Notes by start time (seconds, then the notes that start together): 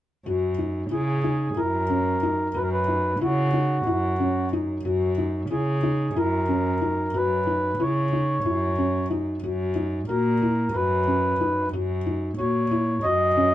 0.26 F#2 F#4
0.58 D#4
0.91 C#3 E4 G#4
1.24 D#4
1.57 F#2 E4 A#4
1.90 C#4
2.23 D#4
2.54 F#2 F#4 B4
2.62 A#4
2.72 B4
2.88 D#4
3.21 C#3 E4 F#4
3.53 D#4
3.86 F#2 E4
4.20 C#4
4.53 D#4
4.85 F#2 F#4
5.18 D#4
5.50 C#3 E4 G#4
5.83 D#4
6.15 F#2 E4 A#4
6.49 C#4
6.82 D#4
7.14 F#2 F#4 B4
7.47 D#4
7.79 C#3 E4 C#5
8.13 D#4
8.45 F#2 E4
8.78 C#4
9.10 D#4
9.43 F#2 F#4
9.76 D#4
10.08 A#2 F#4 A#4
10.42 E4
10.74 F#2 F#4 B4
11.08 C#4
11.41 D#4
11.73 F#2 F#4
12.06 D#4
12.38 A#2 F#4 C#5
12.71 E4
13.03 F#2 F#4 D#5
13.37 C#4